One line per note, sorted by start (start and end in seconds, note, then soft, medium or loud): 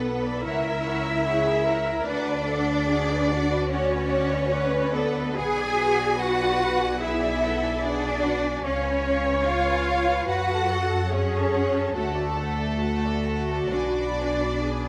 0.00 0.42 B1 medium
0.00 0.39 B3 medium
0.00 0.42 A4 medium
0.00 0.20 B4 soft
0.00 0.42 B4 medium
0.00 0.20 F#5 soft
0.23 0.44 D5 soft
0.23 0.44 B5 soft
0.41 2.07 C#2 medium
0.41 2.07 E4 medium
0.41 1.26 A#4 medium
0.41 0.64 C#5 soft
0.41 2.07 E5 medium
0.41 0.64 F#5 soft
0.65 0.86 A#4 soft
0.65 0.86 E5 soft
0.85 1.06 C#5 medium
0.85 1.06 F#5 soft
1.05 1.27 A#4 soft
1.05 1.26 E5 soft
1.25 1.67 G#4 medium
1.25 1.45 C#5 medium
1.25 1.45 F#5 medium
1.46 1.67 A#4 soft
1.46 1.67 E5 soft
1.66 2.06 A#4 medium
1.66 1.87 C#5 soft
1.66 1.87 F#5 medium
1.87 2.07 A#4 soft
1.87 2.07 E5 soft
2.05 5.35 D2 medium
2.05 3.68 D4 medium
2.05 2.47 B4 medium
2.05 3.67 D5 medium
2.05 2.27 D5 medium
2.05 2.26 F#5 medium
2.28 2.48 B4 medium
2.28 2.47 D5 soft
2.47 2.88 A4 medium
2.47 2.69 D5 soft
2.47 2.69 F#5 medium
2.70 2.90 B4 soft
2.70 2.90 D5 soft
2.90 3.31 G#4 medium
2.90 3.10 D5 medium
2.90 3.10 F#5 medium
3.10 3.31 B4 soft
3.10 3.31 D5 medium
3.31 4.52 F#4 medium
3.31 3.51 D5 medium
3.31 3.51 F#5 medium
3.51 3.71 B4 medium
3.51 3.69 D5 medium
3.70 4.91 C#4 medium
3.70 4.95 C#5 medium
3.70 3.90 D5 medium
3.70 3.89 F#5 medium
3.92 4.12 B4 medium
3.92 4.09 D5 medium
4.10 4.30 D5 medium
4.10 4.31 F#5 medium
4.30 4.51 B4 medium
4.30 4.48 D5 medium
4.49 4.94 B4 medium
4.49 4.69 D5 medium
4.49 4.70 F#5 medium
4.70 4.94 B4 medium
4.70 4.91 D5 medium
4.92 5.38 B3 medium
4.92 5.37 A4 medium
4.92 5.38 B4 medium
4.92 5.16 D5 medium
4.92 5.16 F#5 medium
5.17 5.36 B4 medium
5.17 5.39 D5 medium
5.37 8.64 B1 medium
5.37 5.79 G#4 medium
5.37 6.20 G#4 medium
5.37 5.57 B4 medium
5.37 5.58 F#5 medium
5.37 6.19 G#5 medium
5.58 5.79 D5 medium
5.58 5.79 G#5 medium
5.78 6.19 F#4 medium
5.78 6.00 B4 medium
5.78 6.00 F#5 medium
5.99 6.20 D5 soft
5.99 6.20 G#5 soft
6.18 7.01 F#4 medium
6.18 6.38 B4 medium
6.18 7.01 B4 medium
6.18 6.38 F#5 medium
6.18 7.02 F#5 medium
6.39 6.60 D5 medium
6.39 6.60 G#5 medium
6.60 6.81 B4 medium
6.60 6.81 F#5 medium
6.80 7.01 D5 medium
6.80 7.01 G#5 medium
7.00 7.75 E4 medium
7.00 7.42 G#4 medium
7.00 7.20 B4 medium
7.00 7.82 E5 medium
7.00 7.21 F#5 medium
7.20 7.42 D5 medium
7.20 7.42 G#5 medium
7.41 7.83 A4 medium
7.41 7.63 B4 medium
7.41 7.63 F#5 medium
7.63 7.84 D5 medium
7.63 7.84 G#5 medium
7.76 7.83 E4 medium
7.82 8.64 D4 medium
7.82 8.23 G#4 medium
7.82 8.03 B4 medium
7.82 8.65 D5 medium
7.86 8.04 F#5 medium
8.04 8.24 D5 medium
8.04 8.24 G#5 medium
8.22 8.63 F#4 medium
8.22 8.44 B4 medium
8.22 8.44 F#5 medium
8.43 8.64 D5 medium
8.43 8.64 G#5 medium
8.63 10.26 C#2 medium
8.63 9.44 C#4 medium
8.63 10.28 C#5 medium
8.63 8.83 C#5 medium
8.63 9.44 C#5 medium
8.63 8.83 F5 medium
8.85 9.05 B4 medium
8.85 9.05 G#5 medium
9.05 9.25 C#5 medium
9.05 9.26 F5 medium
9.25 9.46 B4 soft
9.25 9.46 G#5 soft
9.45 10.29 F4 medium
9.45 9.65 C#5 medium
9.45 9.65 F5 medium
9.45 10.29 F5 medium
9.66 9.88 B4 soft
9.66 9.88 G#5 medium
9.88 10.09 C#5 medium
9.88 10.09 F5 medium
10.08 10.29 B4 medium
10.08 10.30 G#5 soft
10.28 11.93 F#2 medium
10.28 11.10 F#4 medium
10.28 10.49 F#4 medium
10.28 10.70 B4 medium
10.28 11.11 F#5 medium
10.28 10.49 F#5 medium
10.51 10.71 A4 soft
10.51 10.71 A5 soft
10.70 10.91 F#4 medium
10.70 11.12 A4 medium
10.70 10.92 F#5 medium
10.90 11.12 A4 soft
10.90 11.12 A5 soft
11.11 11.95 C#4 medium
11.11 11.32 F#4 medium
11.11 11.96 G#4 medium
11.11 11.96 C#5 medium
11.11 11.31 F#5 medium
11.33 11.55 A4 medium
11.33 11.54 A5 soft
11.54 11.75 F#4 medium
11.54 11.75 F#5 soft
11.75 11.95 A4 soft
11.75 11.96 A5 soft
11.95 13.69 D2 medium
11.95 13.69 A3 medium
11.95 12.36 F#4 medium
11.95 13.69 A4 medium
11.95 12.15 A4 medium
11.95 12.15 F#5 medium
12.16 12.37 D5 soft
12.16 12.38 A5 soft
12.36 12.79 A4 medium
12.36 12.58 A4 soft
12.36 12.58 F#5 soft
12.58 12.79 D5 soft
12.58 12.79 A5 soft
12.77 14.63 F#4 medium
12.82 13.01 A4 soft
12.82 13.01 F#5 soft
13.03 13.26 D5 soft
13.03 13.26 A5 soft
13.25 13.49 A4 soft
13.25 13.49 F#5 soft
13.51 13.74 D5 soft
13.51 13.74 A5 soft
13.72 14.88 B1 medium
13.72 14.88 D4 medium
13.72 13.95 B4 soft
13.72 14.88 D5 medium
13.72 13.95 G#5 soft
13.99 14.20 D5 soft
13.99 14.20 B5 soft
14.19 14.42 B4 soft
14.19 14.42 G#5 soft
14.41 14.64 D5 soft
14.41 14.64 B5 soft
14.62 14.88 G#4 medium
14.62 14.84 B4 soft
14.62 14.84 G#5 soft